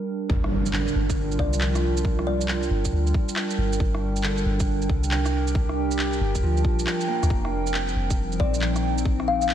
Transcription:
Already playing: G3 D4 G4 A#4 G5
0.29 G1, kick, impact
0.44 cross-stick
0.66 shaker
0.73 D3, clap
0.77 F4 G5
0.88 shaker
0.95 G1
1.10 kick, shaker
1.32 shaker
1.39 C2 D5, kick
1.53 shaker
1.61 F3, clap
1.75 cross-stick, shaker
1.97 shaker
2.05 kick
2.19 cross-stick
2.27 D5
2.41 shaker
2.48 clap
2.63 shaker
2.70 G1
2.85 kick, shaker
2.92 D2
3.07 shaker
3.14 kick
3.29 shaker
3.36 cross-stick, clap
3.51 shaker
3.58 G1
3.73 shaker
3.80 G1, kick
3.94 cross-stick
4.16 shaker
4.23 D3, clap
4.38 shaker
4.46 G1
4.60 kick, shaker
4.82 shaker
4.88 C2 G4, kick
5.04 shaker
5.11 clap
5.25 cross-stick, shaker
5.47 shaker
5.55 kick
5.69 cross-stick
5.91 shaker
5.99 clap
6.13 shaker
6.20 G1
6.35 kick, shaker
6.42 D2 F3
6.57 shaker
6.64 A#1, kick
6.79 shaker
6.87 cross-stick, clap
7.01 shaker
7.08 A#3
7.23 D2, cross-stick, shaker
7.30 F1 F3, kick
7.45 C4, cross-stick
7.67 shaker
7.74 clap
7.88 shaker
7.96 F1 D#4
8.10 kick, shaker
8.32 shaker
8.40 A#1 C4 D5, kick
8.54 shaker
8.61 clap
8.76 cross-stick, shaker
8.98 shaker
9.05 kick
9.20 cross-stick
9.28 F5
9.42 F5, shaker
9.49 clap

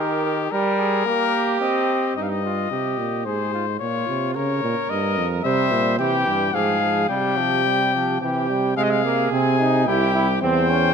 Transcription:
Already playing: D#3 G4 A#4
0.26 A#4
0.52 G3 G4 A#4
0.79 G#4
1.06 A#3 G4
1.61 C4 D#5
2.16 G2 D#4 D#5
2.23 F5
2.30 D#5
2.45 F4
2.71 C3 G4
2.98 A#2
3.26 G#2 G#4 C5
3.54 F4
3.80 A#2 F4 C#5
4.09 C3
4.35 C#3 A#4 C#5
4.63 A#2
4.90 G2 D#5
5.17 F2
5.44 C3 G3 C5 E5
5.72 A#2
5.98 C3 E3 G4 G5
6.27 G2
6.54 G#2 F3 G#4 F5
6.82 F3
7.09 C3 G3 G4 G5
7.38 F3
7.65 G3
7.94 F3
8.21 C3 E3 G4 G5
8.50 G3
8.77 C3 G#3 G#4 F5
8.84 D#5
8.91 F5
9.04 A#3
9.32 C3 C4 G#5
9.60 D#4
9.87 C2 E4 G4 G5
10.15 E4
10.42 E2 C4 C5 G5
10.70 C#4

